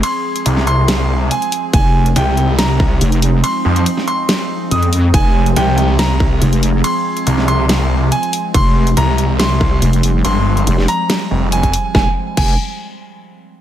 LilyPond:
<<
  \new Staff \with { instrumentName = "Grand piano" } { \time 4/4 \key f \minor \tempo 4 = 141 c'''4. c'''4. aes''8. r16 | aes''8. r16 g''8. r16 bes''2 | c'''4. c'''4. ees'''8. r16 | aes''8. r16 g''8. r16 bes''2 |
c'''4. c'''4. aes''8. r16 | c'''8. r16 bes''8. r16 c'''2 | c'''4. bes''4. aes''8. r16 | aes''8 r8 aes''8 r2 r8 | }
  \new Staff \with { instrumentName = "Ambient pad" } { \time 4/4 \key f \minor << { aes'1 | ees'1~ | ees'1 | aes'1~ |
aes'1 | g1~ | g1 | r1 | } \\ { <f aes c'>1~ | <f aes c'>1~ | <f aes c'>1~ | <f aes c'>1~ |
<f aes c'>1~ | <f aes c'>1~ | <f aes c'>1 | r1 | } >> }
  \new Staff \with { instrumentName = "Detuned saw bass" } { \clef bass \time 4/4 \key f \minor r4 c,2 r4 | r4 c,2 r4 | r8 f,8 r2. | r4 c,2 r4 |
r4 c,2 r4 | r4 c,2 r4 | g,,4 r4. f,,4 r8 | r1 | }
  \new Staff \with { instrumentName = "Wobble bass" } { \clef bass \time 4/4 \key f \minor r1 | f,,4 r2 f,,4 | r2. f,4 | f,,4 r2 f,,4 |
r1 | f,,4 r2 f,,4 | r4 f,,8 r2 r8 | f,,8 r8 f,,8 r2 r8 | }
  \new DrumStaff \with { instrumentName = "Drums" } \drummode { \time 4/4 <hh cymr>8. hh16 <hh cymr>16 sn16 hh8 <hh cymr sn>4 <hh cymr>16 hh16 hho8 | <hh bd cymr>8. hh16 <hh cymr>8 hh8 <hh cymr sn>8 bd8 <hh cymr>16 hh16 hho8 | <hh cymr>8. hh16 <hh cymr>16 sn16 hh8 <hh cymr sn>4 <hh cymr>16 hh16 hho8 | <hh bd cymr>8. hh16 <hh cymr>8 hh8 <hh cymr sn>8 bd8 <hh cymr>16 hh16 hho8 |
<hh cymr>8. hh16 <hh cymr>16 sn16 hh8 <hh cymr sn>4 <hh cymr>16 hh16 hho8 | <hh bd cymr>8. hh16 <hh cymr>8 hh8 <hh cymr sn>8 bd8 <hh cymr>16 hh16 hho8 | <hh cymr>8. hh16 <hh cymr>16 sn16 hho8 <hh cymr sn>4 <hh cymr>16 <hh bd>16 hho8 | <bd sn>4 <cymc bd>4 r4 r4 | }
>>